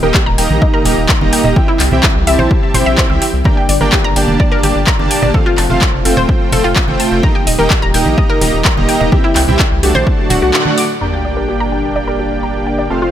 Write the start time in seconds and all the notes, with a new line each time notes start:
Already playing: A#2 D#3 G3 D#4 G4
0.03 D#1 A#3 D#4 G4 A#4 D#5 G5, high conga
0.14 G4, kick, clap
0.26 D#1 A#5
0.38 D#1 A#3 D#4 G4 D#5 G5 A#5, open hi-hat
0.50 A#1, high conga
0.62 D#5, kick
0.74 A#4
0.85 D#1 A#3 D#4 G4 D#5 A#5, open hi-hat, high conga
0.97 D#1
1.09 A#5, kick, clap
1.21 D#1 A#3 D#4 G4 D#5 A#5, high conga
1.33 G5, open hi-hat
1.44 D#1 D#5, low conga
1.56 C3 E3 C4 E4 G4 E5 G5, kick, high conga
1.68 E4
1.80 C2 G5, clap, open hi-hat
1.91 C2 C4 E4 G4 E5 G5, high conga, low conga
2.03 kick, clap
2.15 C2
2.27 C2 C4 E4 G4 E5 A5, open hi-hat
2.39 A#1 C5, high conga, low conga
2.51 kick
2.74 G1 C4 E4 G4 C5 E5 G5, open hi-hat, high conga, low conga
2.86 A#1 E5
2.98 C5, kick, clap
3.10 C2 C4 E4 G4 E5 G5, high conga
3.22 G4, open hi-hat
3.33 C2
3.44 A#2 D3 G3 A#3 D4 G4 D5 G5 A#5, kick, high conga
3.57 G5
3.69 G1 D5, open hi-hat
3.81 G1 A#3 D4 G4 A#4 D5 G5, high conga
3.92 G4, kick, clap
4.04 G1 A#5
4.16 G1 A#3 D4 G4 D5 G5 A5, open hi-hat
4.28 F1, high conga
4.40 D5, kick
4.52 A#4
4.63 G1 A#3 D4 G4 D5 A5, open hi-hat, high conga
4.75 G1
4.87 A#5, kick, clap
4.99 G1 A#3 D4 G4 D5 A5, high conga
5.11 G5, open hi-hat
5.22 G1 D5, low conga
5.34 A2 C3 F3 A3 C4 F4 A4 C5 F5, kick, high conga
5.46 F4
5.58 F1 A5, clap, open hi-hat
5.69 F1 A3 C4 F4 C5 F5, high conga, low conga
5.81 kick, clap
5.93 F1
6.05 F1 A3 C4 F4 A4 C5 G5, open hi-hat
6.17 D#1 C5, high conga, low conga
6.29 kick
6.52 F1 A3 C4 F4 A4 C5 G5, open hi-hat, high conga, low conga
6.64 F1 F4
6.76 kick, clap
6.88 F1 A3 C4 F4 C5 G5, high conga
7.00 A5, open hi-hat
7.11 F1
7.23 A#2 D#3 G3 A#3 D#4 G4 D#5 G5 A#5, kick, high conga
7.35 G5
7.47 D#1 D#5, open hi-hat
7.59 D#1 A#3 D#4 G4 A#4 D#5 G5, high conga
7.70 G4, kick, clap
7.82 D#1 A#5
7.94 D#1 A#3 D#4 G4 D#5 G5 A#5, open hi-hat
8.06 A#1, high conga
8.18 D#5, kick
8.30 A#4
8.41 D#1 A#3 D#4 G4 D#5 A#5, open hi-hat, high conga
8.53 D#1
8.65 A#5, kick, clap
8.77 D#1 A#3 D#4 G4 D#5 A#5, high conga
8.89 G5, open hi-hat
9.00 D#1 D#5, low conga
9.12 C3 E3 C4 E4 G4 E5 G5, kick, high conga
9.24 E4
9.36 C2 G5, clap, open hi-hat
9.48 C2 C4 E4 G4 E5 G5, high conga, low conga
9.59 kick, clap
9.71 C2
9.83 C2 A3 D4 F#4 G4 D5 A5, open hi-hat
9.94 A#1 C5, high conga, low conga
10.07 A2 D3 F#3 D4 F#4, kick
10.30 D1 A3 D4 F#4 D5 F#5, open hi-hat, high conga, low conga
10.42 C2 F#4
10.54 clap
10.65 A3 D4 F#4 D5 F#5, high conga
10.78 D6, open hi-hat
11.01 G1 A#2 D3 G3 A#3 D4 G4 D5 G5 A#5, sub drop
11.13 G5
11.25 D5
11.37 A#4
11.49 G4
11.60 A#5
11.72 G5
11.96 D5
12.08 A#4
12.19 G4
12.43 A#5
12.67 G5
12.78 D5
12.90 F1 A2 C3 F3 A3 C4 F4 A4 C5 F5
13.02 F4